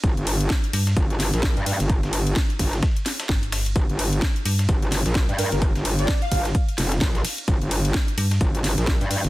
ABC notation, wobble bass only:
X:1
M:4/4
L:1/16
Q:"Swing 16ths" 1/4=129
K:Gm
V:1 name="Wobble bass" clef=bass
G,,, G,,,3 z4 G,,,3 B,,,2 G,,2 G,,,- | G,,, G,,,3 z2 G,,,2 z8 | G,,, G,,,3 z4 G,,,3 B,,,2 G,,2 G,,,- | G,,, G,,,3 z2 G,,,2 z2 F,,,2 B,,,2 z2 |
G,,, G,,,3 z4 G,,,3 B,,,2 G,,2 G,,, |]